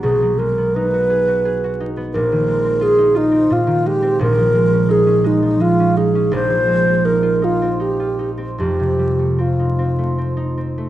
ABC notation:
X:1
M:3/4
L:1/16
Q:1/4=85
K:B
V:1 name="Alto flute"
G2 A2 B6 z2 | [K:Bbmix] B4 A2 E2 F2 G2 | B4 A2 E2 F2 A2 | c4 B2 F2 G2 z2 |
G4 F6 z2 |]
V:2 name="Harp"
[B,,,B,,F,B,DF] F, G, B, D F G F G F D B, | [K:Bbmix] [B,,,B,,] E, A, C F E F C B,, E, A, C | [B,,,B,,] F, A, _D E D A, F, A, D E D | [B,,,B,,] F, A, C E F E C E F E C |
[F,,,F,,] C, G, =A, C E C A, C E C A, |]